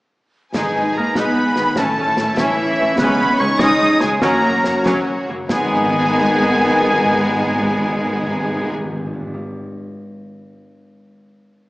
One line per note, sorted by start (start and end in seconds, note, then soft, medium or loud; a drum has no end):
0.54 0.64 G#1 soft
0.54 1.12 G#2 soft
0.54 1.79 G#2 soft
0.54 0.93 G#3 soft
0.54 0.74 G#3 soft
0.54 1.74 G#3 soft
0.54 1.74 D#4 soft
0.54 0.74 D#4 soft
0.54 1.74 G#4 soft
0.54 1.00 G#4 soft
0.54 1.74 B4 soft
0.54 0.93 G#5 medium
0.54 0.94 G#5 medium
0.54 concert bass drum medium
0.54 snare soft
0.54 crash soft
0.75 0.84 G#1 soft
0.75 0.85 G#3 soft
0.75 1.35 D#4 soft
0.75 0.84 D#4 soft
0.95 1.04 G#1 soft
0.95 1.03 G#3 soft
0.95 1.16 A#3 soft
0.95 1.04 B3 soft
0.95 1.79 G#4 soft
0.95 1.16 A#4 soft
0.95 1.16 A#5 medium
0.95 1.17 A#5 soft
1.15 1.25 G#1 soft
1.15 1.36 G#3 soft
1.15 1.76 B3 medium
1.15 1.35 D#4 medium
1.15 1.79 B4 medium
1.15 1.79 B4 soft
1.15 1.76 B5 medium
1.15 1.77 B5 medium
1.15 concert bass drum medium
1.15 snare soft
1.37 1.79 D#4 soft
1.56 1.65 G#1 soft
1.56 1.79 D#3 soft
1.56 1.67 G#3 soft
1.56 1.66 B3 soft
1.56 snare soft
1.76 1.85 A1 soft
1.76 3.00 A2 soft
1.76 2.95 A3 medium
1.76 2.38 A3 medium
1.76 1.97 C#4 medium
1.76 4.19 C#4 medium
1.76 3.00 E4 soft
1.76 2.36 A4 medium
1.76 4.19 C#5 soft
1.76 2.37 A5 medium
1.76 2.39 A5 medium
1.76 concert bass drum medium
1.76 snare medium
1.98 2.06 A1 soft
1.98 2.57 C#4 soft
1.98 2.08 C#4 soft
2.17 2.27 A1 soft
2.17 2.28 A3 soft
2.17 2.28 C#4 soft
2.17 3.01 E4 soft
2.17 snare soft
2.37 2.47 A1 medium
2.37 2.99 E3 medium
2.37 2.58 C#4 medium
2.37 2.97 E4 medium
2.37 3.59 C#5 soft
2.37 2.99 E5 medium
2.37 concert bass drum medium
2.37 snare medium
2.58 3.19 C#4 soft
2.79 2.87 A1 soft
2.79 3.01 E3 soft
2.79 2.88 A3 medium
2.79 2.88 C#4 soft
2.98 3.07 C#2 medium
2.98 4.24 C#3 medium
2.98 4.19 G#3 medium
2.98 3.19 G#3 medium
2.98 3.39 B3 medium
2.98 3.19 C#4 medium
2.98 4.21 D#4 medium
2.98 3.42 B4 medium
2.98 3.39 B5 medium
2.98 concert bass drum medium
2.98 snare medium
3.19 3.27 C#2 medium
3.19 3.29 G#3 medium
3.19 3.80 C#4 soft
3.19 3.28 C#4 medium
3.38 3.48 C#2 medium
3.38 3.49 G#3 medium
3.38 3.60 C#4 medium
3.38 4.24 D#4 soft
3.38 3.61 C#5 medium
3.38 3.60 C#6 medium
3.59 3.68 C#2 medium
3.59 3.80 G#3 medium
3.59 3.80 C#4 medium
3.59 4.01 D#4 medium
3.59 4.85 C#5 medium
3.59 4.00 D#5 medium
3.59 4.01 D#6 medium
3.59 4.02 D#6 loud
3.59 concert bass drum medium
3.59 snare medium
3.81 4.43 C#4 medium
4.00 4.09 C#2 medium
4.00 4.22 G#3 medium
4.00 4.24 G#3 soft
4.00 4.10 G#3 medium
4.00 4.21 G#4 medium
4.00 4.22 G#5 medium
4.00 4.09 G#5 medium
4.00 snare soft
4.21 4.30 F#2 medium
4.21 5.51 F#2 medium
4.21 4.42 F#3 medium
4.21 5.24 F#3 medium
4.21 4.86 A#3 medium
4.21 5.24 C#4 medium
4.21 4.42 C#4 medium
4.21 5.27 F#4 medium
4.21 4.84 A#4 medium
4.21 5.27 C#5 medium
4.21 4.85 A#5 medium
4.21 4.86 A#5 medium
4.21 concert bass drum medium
4.21 snare medium
4.44 4.52 F#2 medium
4.44 4.52 F#3 soft
4.44 4.52 C#4 soft
4.44 5.06 C#4 soft
4.64 4.73 F#2 soft
4.64 4.72 F#3 medium
4.64 4.73 A#3 soft
4.64 5.52 F#4 medium
4.64 snare soft
4.85 4.94 F#2 medium
4.85 5.05 F#3 medium
4.85 5.05 C#4 medium
4.85 5.51 C#5 medium
4.85 concert bass drum medium
4.85 snare medium
5.07 5.51 C#4 soft
5.29 5.37 F#2 medium
5.29 5.51 C#3 soft
5.29 5.37 F#3 medium
5.29 5.37 A#3 medium
5.49 8.71 G#1 medium
5.49 9.41 G#2 medium
5.49 5.57 G#2 medium
5.49 8.71 D#3 medium
5.49 8.71 G#3 medium
5.49 8.71 B3 medium
5.49 8.72 D#4 medium
5.49 8.71 G#4 medium
5.49 8.72 G#4 medium
5.49 8.71 G#5 medium
5.49 snare medium
5.49 mid tom medium
5.57 5.64 G#2 medium
5.57 9.45 G#3 medium
5.64 5.71 G#2 medium
5.64 9.48 B3 soft
5.71 5.78 G#2 medium
5.71 9.51 D#4 medium
5.78 5.86 G#2 medium
5.78 9.55 G#4 medium
5.84 5.93 G#2 medium
5.84 9.58 D#5 medium
5.93 6.00 G#2 medium
6.00 6.07 G#2 medium
6.08 6.15 G#2 medium
6.15 6.22 G#2 medium
6.22 6.29 G#2 medium
6.36 6.43 G#2 medium
6.43 6.50 G#2 medium
6.50 6.57 G#2 medium
6.57 6.64 G#2 medium
6.64 6.71 G#2 medium
6.71 6.78 G#2 medium
6.79 6.85 G#2 medium
6.85 6.92 G#2 medium
6.92 6.99 G#2 medium
6.99 7.06 G#2 medium
7.06 7.13 G#2 medium
7.13 7.20 G#2 medium
7.20 7.27 G#2 medium
7.28 7.34 G#2 medium
7.34 7.41 G#2 medium
7.42 7.49 G#2 medium
7.49 7.56 G#2 medium
7.56 7.63 G#2 medium
7.63 7.70 G#2 medium
7.70 7.77 G#2 medium
7.77 7.84 G#2 medium
7.84 7.91 G#2 medium
7.92 7.99 G#2 medium
7.99 8.07 G#2 medium
8.07 8.14 G#2 medium
8.14 8.21 G#2 medium
8.21 8.28 G#2 medium
8.28 8.35 G#2 medium
8.35 8.42 G#2 medium
8.42 8.49 G#2 medium
8.49 8.56 G#2 medium
8.56 8.63 G#2 medium
8.63 8.70 G#2 medium
8.71 8.78 G#2 medium
8.78 8.85 G#2 medium
8.85 8.92 G#2 medium
8.92 8.99 G#2 medium
8.99 9.06 G#2 medium
9.06 9.13 G#2 medium
9.14 9.20 G#2 medium
9.20 9.27 G#2 medium
9.27 9.34 G#2 medium
9.34 9.41 G#2 medium